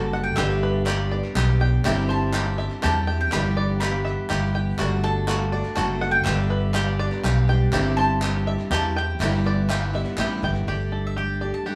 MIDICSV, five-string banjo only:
0, 0, Header, 1, 2, 480
1, 0, Start_track
1, 0, Key_signature, 1, "major"
1, 0, Tempo, 490998
1, 367, Time_signature, 3, 2, 24, 8
1, 11488, End_track
2, 0, Start_track
2, 0, Title_t, "Five-string banjo"
2, 0, Program_c, 0, 105
2, 0, Note_on_c, 0, 66, 78
2, 0, Note_on_c, 0, 69, 66
2, 0, Note_on_c, 0, 74, 75
2, 123, Note_off_c, 0, 69, 0
2, 130, Note_on_c, 0, 78, 75
2, 363, Note_off_c, 0, 74, 0
2, 365, Note_off_c, 0, 66, 0
2, 368, Note_off_c, 0, 78, 0
2, 368, Note_on_c, 0, 67, 84
2, 616, Note_on_c, 0, 71, 74
2, 834, Note_off_c, 0, 67, 0
2, 846, Note_on_c, 0, 67, 79
2, 1089, Note_on_c, 0, 74, 70
2, 1320, Note_off_c, 0, 67, 0
2, 1332, Note_on_c, 0, 67, 86
2, 1572, Note_off_c, 0, 71, 0
2, 1574, Note_on_c, 0, 79, 87
2, 1798, Note_off_c, 0, 67, 0
2, 1808, Note_off_c, 0, 74, 0
2, 1810, Note_on_c, 0, 67, 72
2, 1811, Note_off_c, 0, 79, 0
2, 2042, Note_on_c, 0, 72, 80
2, 2271, Note_off_c, 0, 67, 0
2, 2283, Note_on_c, 0, 67, 82
2, 2523, Note_on_c, 0, 76, 80
2, 2752, Note_off_c, 0, 67, 0
2, 2763, Note_on_c, 0, 67, 85
2, 3004, Note_off_c, 0, 72, 0
2, 3004, Note_on_c, 0, 79, 74
2, 3237, Note_off_c, 0, 67, 0
2, 3245, Note_off_c, 0, 76, 0
2, 3245, Note_off_c, 0, 79, 0
2, 3248, Note_on_c, 0, 67, 84
2, 3487, Note_on_c, 0, 74, 78
2, 3715, Note_off_c, 0, 67, 0
2, 3727, Note_on_c, 0, 67, 72
2, 3955, Note_on_c, 0, 76, 71
2, 4189, Note_off_c, 0, 67, 0
2, 4201, Note_on_c, 0, 67, 76
2, 4443, Note_off_c, 0, 74, 0
2, 4447, Note_on_c, 0, 79, 82
2, 4680, Note_off_c, 0, 76, 0
2, 4680, Note_on_c, 0, 66, 74
2, 4683, Note_off_c, 0, 67, 0
2, 4686, Note_off_c, 0, 79, 0
2, 4927, Note_on_c, 0, 69, 67
2, 5146, Note_off_c, 0, 66, 0
2, 5158, Note_on_c, 0, 66, 75
2, 5399, Note_on_c, 0, 74, 68
2, 5622, Note_off_c, 0, 66, 0
2, 5634, Note_on_c, 0, 66, 86
2, 5879, Note_on_c, 0, 78, 87
2, 5885, Note_off_c, 0, 69, 0
2, 6116, Note_on_c, 0, 67, 78
2, 6118, Note_off_c, 0, 66, 0
2, 6120, Note_off_c, 0, 74, 0
2, 6121, Note_off_c, 0, 78, 0
2, 6356, Note_on_c, 0, 71, 71
2, 6581, Note_off_c, 0, 67, 0
2, 6593, Note_on_c, 0, 67, 84
2, 6837, Note_on_c, 0, 74, 82
2, 7069, Note_off_c, 0, 67, 0
2, 7080, Note_on_c, 0, 67, 79
2, 7318, Note_off_c, 0, 71, 0
2, 7322, Note_on_c, 0, 79, 80
2, 7544, Note_off_c, 0, 67, 0
2, 7556, Note_on_c, 0, 67, 72
2, 7559, Note_off_c, 0, 74, 0
2, 7561, Note_off_c, 0, 79, 0
2, 7806, Note_on_c, 0, 72, 74
2, 8033, Note_off_c, 0, 67, 0
2, 8045, Note_on_c, 0, 67, 74
2, 8282, Note_on_c, 0, 76, 85
2, 8506, Note_off_c, 0, 67, 0
2, 8518, Note_on_c, 0, 67, 84
2, 8763, Note_off_c, 0, 72, 0
2, 8764, Note_on_c, 0, 79, 80
2, 8995, Note_off_c, 0, 67, 0
2, 9000, Note_off_c, 0, 76, 0
2, 9002, Note_off_c, 0, 79, 0
2, 9007, Note_on_c, 0, 67, 82
2, 9252, Note_on_c, 0, 74, 79
2, 9473, Note_off_c, 0, 67, 0
2, 9484, Note_on_c, 0, 67, 76
2, 9726, Note_on_c, 0, 76, 72
2, 9951, Note_off_c, 0, 67, 0
2, 9963, Note_on_c, 0, 67, 74
2, 10201, Note_off_c, 0, 74, 0
2, 10205, Note_on_c, 0, 79, 81
2, 10429, Note_off_c, 0, 67, 0
2, 10440, Note_on_c, 0, 67, 68
2, 10443, Note_off_c, 0, 79, 0
2, 10444, Note_off_c, 0, 76, 0
2, 10676, Note_on_c, 0, 69, 59
2, 10903, Note_off_c, 0, 67, 0
2, 10915, Note_on_c, 0, 67, 62
2, 11155, Note_on_c, 0, 74, 57
2, 11386, Note_off_c, 0, 67, 0
2, 11398, Note_on_c, 0, 67, 68
2, 11488, Note_off_c, 0, 67, 0
2, 11488, Note_off_c, 0, 69, 0
2, 11488, Note_off_c, 0, 74, 0
2, 11488, End_track
0, 0, End_of_file